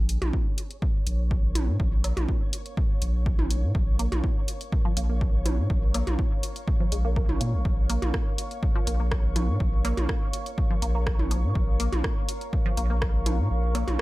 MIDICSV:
0, 0, Header, 1, 6, 480
1, 0, Start_track
1, 0, Key_signature, -5, "minor"
1, 0, Tempo, 487805
1, 1769, Time_signature, 4, 2, 24, 8
1, 13791, End_track
2, 0, Start_track
2, 0, Title_t, "Ambient pad"
2, 0, Program_c, 0, 92
2, 0, Note_on_c, 0, 70, 92
2, 605, Note_on_c, 0, 77, 89
2, 1858, Note_on_c, 0, 85, 81
2, 13791, Note_off_c, 0, 70, 0
2, 13791, Note_off_c, 0, 77, 0
2, 13791, Note_off_c, 0, 85, 0
2, 13791, End_track
3, 0, Start_track
3, 0, Title_t, "Synth texture"
3, 0, Program_c, 1, 99
3, 0, Note_on_c, 1, 73, 84
3, 13791, Note_off_c, 1, 73, 0
3, 13791, End_track
4, 0, Start_track
4, 0, Title_t, "Synth arpeggio sound"
4, 0, Program_c, 2, 84
4, 3929, Note_on_c, 2, 58, 99
4, 4009, Note_off_c, 2, 58, 0
4, 4774, Note_on_c, 2, 53, 102
4, 4803, Note_off_c, 2, 53, 0
4, 4889, Note_on_c, 2, 58, 80
4, 4921, Note_off_c, 2, 58, 0
4, 5014, Note_on_c, 2, 58, 76
4, 5063, Note_off_c, 2, 58, 0
4, 5369, Note_on_c, 2, 53, 76
4, 5449, Note_off_c, 2, 53, 0
4, 5849, Note_on_c, 2, 58, 103
4, 5929, Note_off_c, 2, 58, 0
4, 6694, Note_on_c, 2, 53, 99
4, 6724, Note_off_c, 2, 53, 0
4, 6809, Note_on_c, 2, 56, 78
4, 6863, Note_off_c, 2, 56, 0
4, 6935, Note_on_c, 2, 58, 79
4, 6983, Note_off_c, 2, 58, 0
4, 7049, Note_on_c, 2, 58, 80
4, 7103, Note_off_c, 2, 58, 0
4, 7289, Note_on_c, 2, 58, 76
4, 7321, Note_off_c, 2, 58, 0
4, 7769, Note_on_c, 2, 58, 105
4, 7849, Note_off_c, 2, 58, 0
4, 8615, Note_on_c, 2, 53, 101
4, 8644, Note_off_c, 2, 53, 0
4, 8729, Note_on_c, 2, 58, 76
4, 8761, Note_off_c, 2, 58, 0
4, 8854, Note_on_c, 2, 58, 73
4, 8903, Note_off_c, 2, 58, 0
4, 9209, Note_on_c, 2, 53, 77
4, 9289, Note_off_c, 2, 53, 0
4, 9689, Note_on_c, 2, 58, 105
4, 9769, Note_off_c, 2, 58, 0
4, 10534, Note_on_c, 2, 53, 101
4, 10564, Note_off_c, 2, 53, 0
4, 10649, Note_on_c, 2, 58, 80
4, 10681, Note_off_c, 2, 58, 0
4, 10775, Note_on_c, 2, 58, 76
4, 10824, Note_off_c, 2, 58, 0
4, 11129, Note_on_c, 2, 53, 77
4, 11209, Note_off_c, 2, 53, 0
4, 11609, Note_on_c, 2, 58, 101
4, 11689, Note_off_c, 2, 58, 0
4, 12454, Note_on_c, 2, 53, 105
4, 12484, Note_off_c, 2, 53, 0
4, 12569, Note_on_c, 2, 58, 77
4, 12601, Note_off_c, 2, 58, 0
4, 12694, Note_on_c, 2, 58, 79
4, 12743, Note_off_c, 2, 58, 0
4, 13049, Note_on_c, 2, 53, 77
4, 13129, Note_off_c, 2, 53, 0
4, 13529, Note_on_c, 2, 58, 106
4, 13609, Note_off_c, 2, 58, 0
4, 13791, End_track
5, 0, Start_track
5, 0, Title_t, "Sub bass"
5, 0, Program_c, 3, 38
5, 0, Note_on_c, 3, 34, 99
5, 176, Note_off_c, 3, 34, 0
5, 214, Note_on_c, 3, 34, 80
5, 307, Note_off_c, 3, 34, 0
5, 1049, Note_on_c, 3, 34, 103
5, 1655, Note_on_c, 3, 46, 92
5, 1669, Note_off_c, 3, 34, 0
5, 1747, Note_off_c, 3, 46, 0
5, 1769, Note_on_c, 3, 34, 103
5, 2096, Note_off_c, 3, 34, 0
5, 2134, Note_on_c, 3, 34, 80
5, 2227, Note_off_c, 3, 34, 0
5, 2970, Note_on_c, 3, 34, 106
5, 3575, Note_on_c, 3, 46, 96
5, 3590, Note_off_c, 3, 34, 0
5, 3668, Note_off_c, 3, 46, 0
5, 3689, Note_on_c, 3, 34, 99
5, 4016, Note_off_c, 3, 34, 0
5, 4055, Note_on_c, 3, 34, 83
5, 4148, Note_off_c, 3, 34, 0
5, 4889, Note_on_c, 3, 34, 104
5, 5495, Note_on_c, 3, 46, 92
5, 5510, Note_off_c, 3, 34, 0
5, 5587, Note_off_c, 3, 46, 0
5, 5609, Note_on_c, 3, 34, 99
5, 5936, Note_off_c, 3, 34, 0
5, 5976, Note_on_c, 3, 34, 80
5, 6068, Note_off_c, 3, 34, 0
5, 6809, Note_on_c, 3, 34, 105
5, 7169, Note_off_c, 3, 34, 0
5, 7175, Note_on_c, 3, 34, 89
5, 7268, Note_off_c, 3, 34, 0
5, 7290, Note_on_c, 3, 46, 103
5, 7415, Note_on_c, 3, 32, 87
5, 7430, Note_off_c, 3, 46, 0
5, 7508, Note_off_c, 3, 32, 0
5, 7529, Note_on_c, 3, 34, 96
5, 7856, Note_off_c, 3, 34, 0
5, 7895, Note_on_c, 3, 34, 81
5, 7988, Note_off_c, 3, 34, 0
5, 8729, Note_on_c, 3, 34, 109
5, 9335, Note_on_c, 3, 46, 100
5, 9349, Note_off_c, 3, 34, 0
5, 9427, Note_off_c, 3, 46, 0
5, 9449, Note_on_c, 3, 34, 104
5, 9776, Note_off_c, 3, 34, 0
5, 9815, Note_on_c, 3, 34, 83
5, 9907, Note_off_c, 3, 34, 0
5, 10649, Note_on_c, 3, 34, 104
5, 11255, Note_on_c, 3, 46, 96
5, 11270, Note_off_c, 3, 34, 0
5, 11347, Note_off_c, 3, 46, 0
5, 11369, Note_on_c, 3, 34, 102
5, 11696, Note_off_c, 3, 34, 0
5, 11735, Note_on_c, 3, 34, 82
5, 11828, Note_off_c, 3, 34, 0
5, 12570, Note_on_c, 3, 34, 106
5, 13175, Note_on_c, 3, 46, 102
5, 13190, Note_off_c, 3, 34, 0
5, 13267, Note_off_c, 3, 46, 0
5, 13290, Note_on_c, 3, 34, 101
5, 13617, Note_off_c, 3, 34, 0
5, 13655, Note_on_c, 3, 34, 79
5, 13748, Note_off_c, 3, 34, 0
5, 13791, End_track
6, 0, Start_track
6, 0, Title_t, "Drums"
6, 89, Note_on_c, 9, 42, 90
6, 187, Note_off_c, 9, 42, 0
6, 214, Note_on_c, 9, 47, 97
6, 215, Note_on_c, 9, 42, 36
6, 312, Note_off_c, 9, 47, 0
6, 313, Note_off_c, 9, 42, 0
6, 329, Note_on_c, 9, 36, 100
6, 427, Note_off_c, 9, 36, 0
6, 569, Note_on_c, 9, 42, 93
6, 668, Note_off_c, 9, 42, 0
6, 695, Note_on_c, 9, 42, 34
6, 793, Note_off_c, 9, 42, 0
6, 809, Note_on_c, 9, 36, 113
6, 907, Note_off_c, 9, 36, 0
6, 1049, Note_on_c, 9, 42, 90
6, 1147, Note_off_c, 9, 42, 0
6, 1289, Note_on_c, 9, 36, 98
6, 1387, Note_off_c, 9, 36, 0
6, 1529, Note_on_c, 9, 42, 90
6, 1529, Note_on_c, 9, 47, 80
6, 1627, Note_off_c, 9, 47, 0
6, 1628, Note_off_c, 9, 42, 0
6, 1769, Note_on_c, 9, 36, 118
6, 1867, Note_off_c, 9, 36, 0
6, 2009, Note_on_c, 9, 42, 90
6, 2009, Note_on_c, 9, 77, 50
6, 2107, Note_off_c, 9, 77, 0
6, 2108, Note_off_c, 9, 42, 0
6, 2134, Note_on_c, 9, 47, 94
6, 2135, Note_on_c, 9, 42, 40
6, 2232, Note_off_c, 9, 47, 0
6, 2234, Note_off_c, 9, 42, 0
6, 2249, Note_on_c, 9, 36, 100
6, 2347, Note_off_c, 9, 36, 0
6, 2489, Note_on_c, 9, 42, 95
6, 2588, Note_off_c, 9, 42, 0
6, 2615, Note_on_c, 9, 42, 38
6, 2713, Note_off_c, 9, 42, 0
6, 2729, Note_on_c, 9, 36, 122
6, 2827, Note_off_c, 9, 36, 0
6, 2969, Note_on_c, 9, 42, 98
6, 3067, Note_off_c, 9, 42, 0
6, 3209, Note_on_c, 9, 36, 111
6, 3307, Note_off_c, 9, 36, 0
6, 3334, Note_on_c, 9, 47, 78
6, 3433, Note_off_c, 9, 47, 0
6, 3449, Note_on_c, 9, 42, 100
6, 3547, Note_off_c, 9, 42, 0
6, 3689, Note_on_c, 9, 36, 116
6, 3787, Note_off_c, 9, 36, 0
6, 3929, Note_on_c, 9, 42, 93
6, 4028, Note_off_c, 9, 42, 0
6, 4055, Note_on_c, 9, 42, 39
6, 4055, Note_on_c, 9, 47, 88
6, 4153, Note_off_c, 9, 42, 0
6, 4153, Note_off_c, 9, 47, 0
6, 4169, Note_on_c, 9, 36, 105
6, 4267, Note_off_c, 9, 36, 0
6, 4409, Note_on_c, 9, 42, 93
6, 4507, Note_off_c, 9, 42, 0
6, 4534, Note_on_c, 9, 42, 36
6, 4633, Note_off_c, 9, 42, 0
6, 4649, Note_on_c, 9, 36, 119
6, 4747, Note_off_c, 9, 36, 0
6, 4888, Note_on_c, 9, 42, 100
6, 4987, Note_off_c, 9, 42, 0
6, 5129, Note_on_c, 9, 36, 111
6, 5227, Note_off_c, 9, 36, 0
6, 5369, Note_on_c, 9, 42, 93
6, 5369, Note_on_c, 9, 47, 79
6, 5467, Note_off_c, 9, 42, 0
6, 5467, Note_off_c, 9, 47, 0
6, 5609, Note_on_c, 9, 36, 117
6, 5707, Note_off_c, 9, 36, 0
6, 5849, Note_on_c, 9, 42, 95
6, 5849, Note_on_c, 9, 77, 52
6, 5947, Note_off_c, 9, 42, 0
6, 5947, Note_off_c, 9, 77, 0
6, 5974, Note_on_c, 9, 42, 39
6, 5974, Note_on_c, 9, 47, 89
6, 6073, Note_off_c, 9, 42, 0
6, 6073, Note_off_c, 9, 47, 0
6, 6089, Note_on_c, 9, 36, 106
6, 6187, Note_off_c, 9, 36, 0
6, 6329, Note_on_c, 9, 42, 98
6, 6427, Note_off_c, 9, 42, 0
6, 6455, Note_on_c, 9, 42, 37
6, 6553, Note_off_c, 9, 42, 0
6, 6569, Note_on_c, 9, 36, 122
6, 6667, Note_off_c, 9, 36, 0
6, 6809, Note_on_c, 9, 42, 91
6, 6908, Note_off_c, 9, 42, 0
6, 7049, Note_on_c, 9, 36, 107
6, 7147, Note_off_c, 9, 36, 0
6, 7174, Note_on_c, 9, 47, 78
6, 7273, Note_off_c, 9, 47, 0
6, 7289, Note_on_c, 9, 42, 94
6, 7388, Note_off_c, 9, 42, 0
6, 7529, Note_on_c, 9, 36, 112
6, 7627, Note_off_c, 9, 36, 0
6, 7769, Note_on_c, 9, 42, 92
6, 7868, Note_off_c, 9, 42, 0
6, 7894, Note_on_c, 9, 47, 90
6, 7895, Note_on_c, 9, 42, 37
6, 7992, Note_off_c, 9, 47, 0
6, 7994, Note_off_c, 9, 42, 0
6, 8009, Note_on_c, 9, 36, 101
6, 8009, Note_on_c, 9, 37, 85
6, 8107, Note_off_c, 9, 36, 0
6, 8108, Note_off_c, 9, 37, 0
6, 8249, Note_on_c, 9, 42, 92
6, 8348, Note_off_c, 9, 42, 0
6, 8375, Note_on_c, 9, 42, 35
6, 8473, Note_off_c, 9, 42, 0
6, 8489, Note_on_c, 9, 36, 121
6, 8587, Note_off_c, 9, 36, 0
6, 8729, Note_on_c, 9, 42, 91
6, 8828, Note_off_c, 9, 42, 0
6, 8969, Note_on_c, 9, 36, 103
6, 8969, Note_on_c, 9, 37, 88
6, 9067, Note_off_c, 9, 36, 0
6, 9068, Note_off_c, 9, 37, 0
6, 9208, Note_on_c, 9, 47, 74
6, 9209, Note_on_c, 9, 42, 94
6, 9307, Note_off_c, 9, 42, 0
6, 9307, Note_off_c, 9, 47, 0
6, 9449, Note_on_c, 9, 36, 112
6, 9547, Note_off_c, 9, 36, 0
6, 9689, Note_on_c, 9, 42, 87
6, 9689, Note_on_c, 9, 77, 50
6, 9787, Note_off_c, 9, 77, 0
6, 9788, Note_off_c, 9, 42, 0
6, 9814, Note_on_c, 9, 47, 89
6, 9815, Note_on_c, 9, 42, 37
6, 9913, Note_off_c, 9, 42, 0
6, 9913, Note_off_c, 9, 47, 0
6, 9929, Note_on_c, 9, 36, 97
6, 9929, Note_on_c, 9, 37, 86
6, 10027, Note_off_c, 9, 36, 0
6, 10028, Note_off_c, 9, 37, 0
6, 10169, Note_on_c, 9, 42, 93
6, 10267, Note_off_c, 9, 42, 0
6, 10295, Note_on_c, 9, 42, 36
6, 10393, Note_off_c, 9, 42, 0
6, 10409, Note_on_c, 9, 36, 117
6, 10507, Note_off_c, 9, 36, 0
6, 10649, Note_on_c, 9, 42, 86
6, 10747, Note_off_c, 9, 42, 0
6, 10889, Note_on_c, 9, 36, 101
6, 10889, Note_on_c, 9, 37, 90
6, 10987, Note_off_c, 9, 36, 0
6, 10988, Note_off_c, 9, 37, 0
6, 11015, Note_on_c, 9, 47, 72
6, 11113, Note_off_c, 9, 47, 0
6, 11130, Note_on_c, 9, 42, 89
6, 11228, Note_off_c, 9, 42, 0
6, 11369, Note_on_c, 9, 36, 114
6, 11467, Note_off_c, 9, 36, 0
6, 11609, Note_on_c, 9, 42, 88
6, 11708, Note_off_c, 9, 42, 0
6, 11734, Note_on_c, 9, 47, 88
6, 11735, Note_on_c, 9, 42, 35
6, 11833, Note_off_c, 9, 42, 0
6, 11833, Note_off_c, 9, 47, 0
6, 11849, Note_on_c, 9, 36, 97
6, 11849, Note_on_c, 9, 37, 92
6, 11947, Note_off_c, 9, 36, 0
6, 11948, Note_off_c, 9, 37, 0
6, 12089, Note_on_c, 9, 42, 90
6, 12187, Note_off_c, 9, 42, 0
6, 12214, Note_on_c, 9, 42, 34
6, 12313, Note_off_c, 9, 42, 0
6, 12329, Note_on_c, 9, 36, 108
6, 12428, Note_off_c, 9, 36, 0
6, 12569, Note_on_c, 9, 42, 86
6, 12667, Note_off_c, 9, 42, 0
6, 12809, Note_on_c, 9, 36, 100
6, 12809, Note_on_c, 9, 37, 94
6, 12907, Note_off_c, 9, 36, 0
6, 12908, Note_off_c, 9, 37, 0
6, 13049, Note_on_c, 9, 42, 92
6, 13049, Note_on_c, 9, 47, 76
6, 13147, Note_off_c, 9, 47, 0
6, 13148, Note_off_c, 9, 42, 0
6, 13529, Note_on_c, 9, 42, 86
6, 13529, Note_on_c, 9, 77, 50
6, 13627, Note_off_c, 9, 77, 0
6, 13628, Note_off_c, 9, 42, 0
6, 13654, Note_on_c, 9, 47, 94
6, 13655, Note_on_c, 9, 42, 36
6, 13752, Note_off_c, 9, 47, 0
6, 13753, Note_off_c, 9, 42, 0
6, 13791, End_track
0, 0, End_of_file